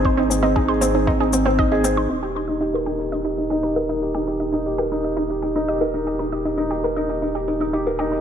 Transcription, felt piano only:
X:1
M:4/4
L:1/16
Q:1/4=117
K:Eb
V:1 name="Felt piano"
C E C C E A C E C E C C E A C E | E G E E G B E G E G E E G B E G | E G E E G B E G E G E E G B E G | E G E E G B E G E G E E G B E G |]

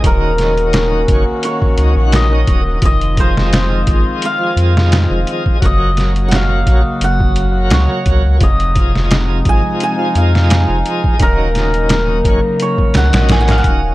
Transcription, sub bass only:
X:1
M:4/4
L:1/16
Q:"Swing 16ths" 1/4=86
K:Fphr
V:1 name="Sub bass" clef=bass
E,,,6 G,,, z3 D,, B,,,3 E,,,2 | F,,,6 A,,, z3 F,,3 F,,, z2 | G,,,6 B,,, z G,,,4 D,, z D,, D,, | F,,,6 A,,, z3 F,,3 F,,, z2 |
E,,,6 G,,, z3 D,, B,,,3 E,,,2 |]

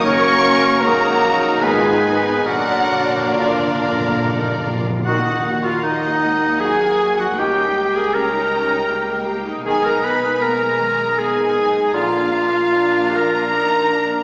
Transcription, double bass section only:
X:1
M:3/4
L:1/16
Q:1/4=78
K:Ebm
V:1 name="Double bass section" clef=bass
G,,,4 B,,,4 A,,,4 | B,,,8- B,,,3 z | E,,12 | D,,12 |
C,,12 | B,,,12 |]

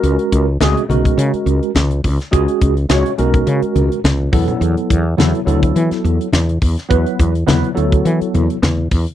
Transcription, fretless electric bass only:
X:1
M:4/4
L:1/16
Q:"Swing 16ths" 1/4=105
K:Elyd
V:1 name="Fretless electric bass" clef=bass
C,, z C,,2 C,, z B,,,2 C, z C,, z C,,2 C,, z | C,, z C,,2 C,, z B,,,2 C, z C,, z C,,2 E,, z | E,, z E,,2 E,, z =D,,2 E, z E,, z E,,2 E,, z | E,, z E,,2 E,, z =D,,2 E, z E,, z E,,2 E,, z |]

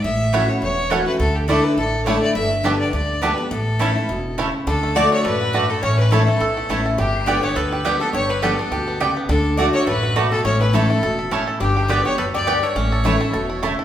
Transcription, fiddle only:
X:1
M:4/4
L:1/8
Q:"Swing" 1/4=208
K:Amix
V:1 name="Fiddle"
e3 c c2 A B | A G A B A2 c d | e2 z d d2 B2 | A6 z2 |
A2 d c B3 A | c B A4- A z | G2 d c B3 A | c B A4- A z |
A2 d c B3 A | c B A4- A z | G2 d c B d2 c- | c6 z2 |]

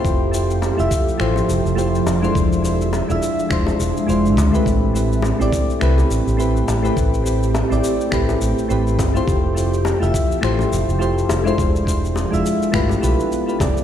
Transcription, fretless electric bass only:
X:1
M:4/4
L:1/16
Q:"Swing 16ths" 1/4=104
K:Am
V:1 name="Fretless electric bass" clef=bass
F,,,4 z F,,, z2 A,,, z F,,, F,,,2 z F,,, z | E,,,4 z E,,, z2 E,,, z E,,, z E,,,2 D,, z | A,,,4 z A,,, z2 C,, z A,,, A,,,2 z A,,, z | A,,,4 z A,,, z2 A,,, z A,,, z A,,,2 G,,, z |
F,,,4 z F,,, z2 A,,, z F,,, F,,,2 z F,,, z | E,,,4 z E,,, z2 G,,, z B,,, z3 F,,, z |]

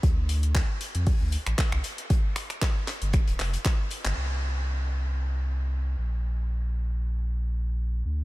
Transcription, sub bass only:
X:1
M:4/4
L:1/16
Q:"Swing 16ths" 1/4=116
K:Gm
V:1 name="Sub bass" clef=bass
D,,4 z3 F,, z D,, z A,,, z C,, z2 | z6 z G,,, z D,,, F,,, z4 G,,, | C,,12- C,,2 B,,,2- | B,,,12- B,,,2 D,,2 |]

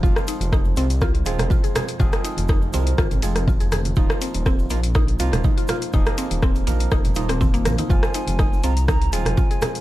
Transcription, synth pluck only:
X:1
M:4/4
L:1/16
Q:1/4=122
K:Ebmix
V:1 name="Synth pluck"
F z E z E z C z F z A z F A A z | F z E z E z C z F z A z F A A z | E z C z C z B, z E z F z E F F z | E z C z C z B, z E z E C C B, B E |
F z E z E z C z E z A z F A A z |]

